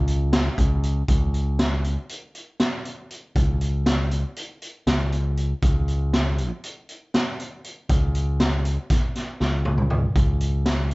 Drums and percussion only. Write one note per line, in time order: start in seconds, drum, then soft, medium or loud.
0.07 closed hi-hat medium
0.33 snare loud
0.33 closed hi-hat medium
0.58 kick medium
0.58 closed hi-hat medium
0.83 closed hi-hat medium
1.08 kick medium
1.08 closed hi-hat medium
1.34 closed hi-hat soft
1.59 snare loud
1.59 closed hi-hat medium
1.84 closed hi-hat medium
2.09 closed hi-hat medium
2.35 closed hi-hat medium
2.60 snare medium
2.60 closed hi-hat medium
2.85 closed hi-hat medium
3.11 closed hi-hat medium
3.36 kick loud
3.36 closed hi-hat medium
3.61 closed hi-hat medium
3.86 snare medium
3.86 closed hi-hat medium
4.11 closed hi-hat medium
4.36 closed hi-hat medium
4.62 closed hi-hat medium
4.87 snare medium
4.87 closed hi-hat medium
5.12 closed hi-hat medium
5.37 closed hi-hat soft
5.62 kick loud
5.62 closed hi-hat medium
5.88 closed hi-hat soft
6.13 snare medium
6.13 closed hi-hat medium
6.38 closed hi-hat medium
6.64 closed hi-hat medium
6.89 closed hi-hat medium
7.14 snare medium
7.14 closed hi-hat medium
7.40 closed hi-hat medium
7.64 closed hi-hat medium
7.89 kick loud
7.89 closed hi-hat medium
8.15 closed hi-hat medium
8.40 snare loud
8.40 closed hi-hat medium
8.65 closed hi-hat medium
8.90 kick loud
8.90 snare soft
8.90 closed hi-hat medium
9.15 snare soft
9.15 closed hi-hat medium
9.40 snare soft
9.65 high tom medium
9.78 mid tom medium
9.90 mid tom medium
10.16 kick medium
10.16 closed hi-hat medium
10.41 closed hi-hat medium
10.66 snare medium
10.66 closed hi-hat medium
10.91 closed hi-hat medium